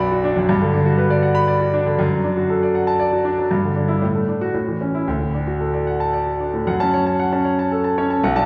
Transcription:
0.00 0.45 B1 medium
0.00 0.36 F#2 medium
0.00 0.24 D4 medium
0.00 0.12 F#4 medium
0.00 0.52 B4 medium
0.00 0.51 D5 medium
0.00 0.51 F#5 medium
0.00 0.51 B5 medium
0.12 0.31 F#4 medium
0.24 0.44 D4 medium
0.36 0.49 F#2 medium
0.49 1.96 G2 medium
0.61 0.81 D3 medium
0.74 0.94 D4 medium
0.86 1.06 F#4 medium
0.98 1.18 B4 medium
1.10 1.31 D5 medium
1.23 1.43 F#5 medium
1.35 1.56 B5 medium
1.48 1.69 D5 medium
1.60 1.81 F#4 medium
1.74 1.94 D4 medium
1.86 1.99 D3 soft
1.99 3.47 F#2 medium
2.11 2.32 F#3 medium
2.24 2.44 D4 soft
2.37 2.57 F#4 medium
2.50 2.70 A4 medium
2.63 2.83 D5 medium
2.75 2.95 F#5 soft
2.87 3.08 A5 medium
2.99 3.20 D5 medium
3.13 3.33 F#4 medium
3.25 3.46 D4 medium
3.38 3.51 F#3 medium
3.51 4.00 G2 medium
3.63 3.84 D3 soft
3.76 3.96 D4 soft
3.88 4.01 E4 medium
4.02 4.52 A2 medium
4.15 4.36 A3 soft
4.28 4.49 D4 soft
4.41 4.54 F#4 medium
4.54 5.06 A2 medium
4.67 4.89 E3 soft
4.81 5.02 C#4 soft
4.95 5.08 E4 medium
5.07 6.63 D2 medium
5.20 5.42 A2 soft
5.34 5.55 D4 soft
5.47 5.69 F#4 soft
5.60 5.82 A4 soft
5.74 5.95 D5 soft
5.87 6.09 F#5 soft
6.00 6.22 A5 medium
6.13 6.35 D5 soft
6.26 6.48 F#4 soft
6.40 6.62 D4 soft
6.54 6.67 A2 soft
6.67 8.19 F#2 medium
6.67 6.88 F#5 medium
6.80 7.01 C#4 medium
6.80 7.01 A5 medium
6.94 7.14 C#5 soft
7.06 7.27 A5 medium
7.19 7.40 F#5 medium
7.32 7.53 C#4 medium
7.32 7.53 A5 medium
7.45 7.66 C#5 soft
7.59 7.79 A5 medium
7.72 7.92 A4 medium
7.84 8.05 A5 medium
7.98 8.18 C#4 medium
7.98 8.18 C#5 medium
8.10 8.23 A5 medium
8.23 8.46 B1 medium
8.23 8.44 F#5 medium
8.36 8.46 D4 medium
8.36 8.46 A5 medium

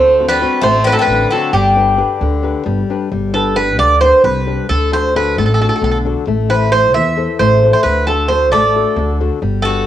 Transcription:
0.00 0.43 D2 medium
0.00 0.41 D3 medium
0.00 0.25 A3 medium
0.00 0.26 C5 medium
0.20 0.40 C4 soft
0.20 0.40 D4 soft
0.20 0.41 F#4 soft
0.28 0.61 G3 medium
0.28 0.61 B4 loud
0.41 0.78 C4 soft
0.41 0.78 D4 soft
0.41 0.78 F#4 medium
0.61 0.94 A1 medium
0.61 0.84 A3 medium
0.61 1.08 A3 medium
0.61 0.85 C5 medium
0.84 0.92 G3 medium
0.84 1.23 C4 soft
0.84 1.24 D4 soft
0.84 0.93 B4 loud
0.88 0.98 F#3 medium
0.88 1.24 F#4 medium
0.93 1.00 A4 medium
0.99 1.29 G3 medium
0.99 1.30 B4 medium
1.07 1.24 A1 medium
1.07 1.53 D3 medium
1.30 1.52 F#3 medium
1.30 1.50 C4 soft
1.30 1.51 D4 soft
1.30 1.51 F#4 medium
1.30 1.53 A4 medium
1.53 2.01 G1 medium
1.53 2.63 D3 medium
1.53 1.98 G3 medium
1.53 2.62 G4 medium
1.76 1.96 D4 soft
1.76 1.97 G4 soft
1.76 1.96 B4 soft
1.97 2.34 D4 soft
1.97 2.35 G4 soft
1.97 2.35 B4 medium
2.21 2.53 D2 medium
2.21 2.65 D3 medium
2.43 2.80 D4 medium
2.43 2.80 G4 soft
2.43 2.80 B4 medium
2.66 2.82 G1 medium
2.66 3.10 G3 medium
2.90 3.08 D4 medium
2.90 3.08 G4 soft
2.90 3.08 B4 medium
3.12 3.79 G1 medium
3.12 3.56 G3 medium
3.34 3.55 D4 soft
3.34 3.56 G4 soft
3.34 3.55 A4 medium
3.34 3.57 B4 medium
3.56 3.93 D4 soft
3.56 3.93 G4 soft
3.56 3.78 B4 medium
3.56 3.94 B4 medium
3.79 4.11 D2 medium
3.79 4.23 D3 medium
3.79 4.00 D5 loud
4.01 4.39 D4 soft
4.01 4.38 G4 soft
4.01 4.39 B4 medium
4.01 4.22 C5 medium
4.24 4.56 C2 medium
4.24 4.68 G3 medium
4.24 4.66 B4 medium
4.47 4.65 D4 soft
4.47 4.65 G4 soft
4.47 4.66 B4 medium
4.69 5.38 D2 medium
4.69 5.13 D3 medium
4.69 4.90 A4 medium
4.92 5.14 D4 soft
4.92 5.15 F#4 soft
4.92 5.15 A4 soft
4.92 5.14 C5 medium
5.15 5.51 D4 medium
5.15 5.51 F#4 soft
5.15 5.52 A4 medium
5.15 5.37 B4 medium
5.37 5.68 A1 medium
5.37 5.81 A3 medium
5.37 5.45 A4 medium
5.46 5.52 A4 medium
5.54 5.60 A4 medium
5.60 5.96 D4 soft
5.60 5.96 F#4 soft
5.60 5.67 A4 medium
5.60 5.97 A4 medium
5.69 5.75 A4 medium
5.76 5.82 A4 soft
5.82 6.13 B1 medium
5.82 6.26 D3 medium
5.82 5.90 A4 medium
5.91 5.97 A4 soft
6.05 6.23 D4 medium
6.05 6.24 F#4 soft
6.05 6.24 A4 medium
6.27 6.95 A1 medium
6.27 6.71 A3 medium
6.49 6.70 E4 soft
6.49 6.70 A4 soft
6.49 6.71 B4 medium
6.49 6.71 C5 soft
6.71 7.08 E4 medium
6.71 7.08 A4 soft
6.71 6.93 C5 loud
6.71 7.08 C5 medium
6.94 7.26 E2 medium
6.94 7.38 E3 medium
6.94 7.36 E5 medium
7.17 7.53 E4 soft
7.17 7.53 A4 soft
7.17 7.53 C5 soft
7.39 7.71 A1 medium
7.39 7.83 A3 medium
7.39 7.72 C5 medium
7.63 7.81 E4 soft
7.63 7.81 A4 soft
7.63 7.81 C5 medium
7.73 7.83 C5 medium
7.83 8.52 D2 medium
7.83 8.29 D3 medium
7.83 8.05 B4 medium
8.07 8.28 D4 soft
8.07 8.29 F#4 soft
8.07 8.28 A4 medium
8.07 8.29 A4 soft
8.28 8.66 D4 medium
8.28 8.66 F#4 soft
8.28 8.66 A4 medium
8.28 8.50 C5 medium
8.52 8.84 A1 medium
8.52 8.97 A3 medium
8.52 9.16 A4 medium
8.52 9.15 D5 medium
8.75 9.11 D4 soft
8.75 9.12 F#4 soft
8.75 9.12 A4 soft
8.96 9.28 D2 medium
8.96 9.42 D3 medium
9.21 9.38 D4 soft
9.21 9.39 F#4 soft
9.21 9.38 A4 soft
9.42 9.87 G1 medium
9.42 9.86 G3 medium
9.62 9.86 D4 soft
9.62 9.86 F#4 medium
9.62 9.87 G4 soft
9.62 9.84 A4 medium
9.62 9.87 B4 soft

